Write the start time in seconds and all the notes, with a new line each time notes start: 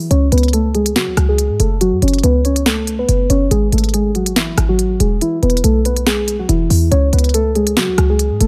0.10 C#2 C#4 C#5, closed hi-hat
0.32 C#2 B3 B4, closed hi-hat
0.38 closed hi-hat
0.43 closed hi-hat
0.48 closed hi-hat
0.53 A3 A4, closed hi-hat
0.75 G#3 G#4, closed hi-hat
0.86 closed hi-hat
0.96 C#3 F#3 F#4, snare, closed hi-hat
1.07 C#2
1.17 C#2, cross-stick, closed hi-hat
1.29 G#3 G#4
1.38 closed hi-hat
1.50 G#2
1.60 F#1 A3 A4, closed hi-hat
1.81 F#3 F#4, closed hi-hat
1.92 F#2
2.02 F#1 C#4 C#5, closed hi-hat
2.08 closed hi-hat
2.14 closed hi-hat
2.19 closed hi-hat
2.23 C#2 B3 B4, closed hi-hat
2.45 C#4 C#5, closed hi-hat
2.56 closed hi-hat
2.66 A3 A4, snare, closed hi-hat
2.87 closed hi-hat
2.99 B3 B4
3.09 F#1, closed hi-hat
3.30 F#1 C#4 C#5, closed hi-hat
3.51 G#1 G#3 G#4, closed hi-hat
3.72 G#1 A3 A4, closed hi-hat
3.78 closed hi-hat
3.84 closed hi-hat
3.89 closed hi-hat
3.94 G#3 G#4, closed hi-hat
4.15 F#3 F#4, closed hi-hat
4.26 closed hi-hat
4.36 E3 E4, snare, closed hi-hat
4.58 G#1, cross-stick, closed hi-hat
4.69 F#3 F#4
4.79 closed hi-hat
5.00 E1 G#3 G#4, closed hi-hat
5.21 E3 E4, closed hi-hat
5.42 E1 B3 B4, closed hi-hat
5.50 closed hi-hat
5.57 closed hi-hat
5.64 B1 A3 A4, closed hi-hat
5.85 B3 B4, closed hi-hat
5.97 closed hi-hat
6.06 G#3 G#4, snare, closed hi-hat
6.28 closed hi-hat
6.39 F#3 F#4
6.49 E1 E3 E4, closed hi-hat
6.70 E2, open hi-hat
6.91 C#2 C#4 C#5, closed hi-hat
7.13 C#2 B3 B4, closed hi-hat
7.19 closed hi-hat
7.24 closed hi-hat
7.29 closed hi-hat
7.34 A3 A4, closed hi-hat
7.55 G#3 G#4, closed hi-hat
7.67 closed hi-hat
7.77 C#3 F#3 F#4, snare, closed hi-hat
7.88 C#2
7.98 C#2, cross-stick, closed hi-hat
8.10 G#3 G#4
8.19 closed hi-hat
8.31 G#2
8.41 F#1 A3 A4, closed hi-hat